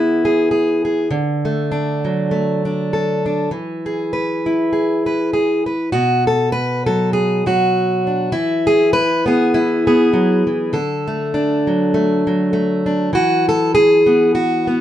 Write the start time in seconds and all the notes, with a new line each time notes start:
Already playing: E3 B3 E4 G#4
0.25 G#4
0.51 G#4
0.85 G#4
1.11 D3
1.45 A3
1.72 D4
2.05 F#3
2.31 A3
2.65 D4
2.93 A4
3.26 D4
3.51 E3
3.86 G#4
4.13 B4
4.46 E4
4.73 G#4
5.06 B4
5.33 G#4
5.66 B4
5.92 B2 F#4
6.27 A4
6.52 B4
6.86 F#3 A4
7.13 G#4
7.46 F#3 F#4
8.07 D4
8.32 E3 E4
8.67 G#4
8.93 B4
9.26 B3 G#4
9.54 E4
9.87 B3 G#4
10.13 F#3
10.47 E3
10.73 D3 A4
11.08 A3
11.34 D4
11.67 F#3
11.94 A3
12.27 F#3
12.53 A3
12.86 D4
13.13 E3 F#4
13.49 A4
13.75 G#4
14.06 B3
14.35 F#4
14.67 B3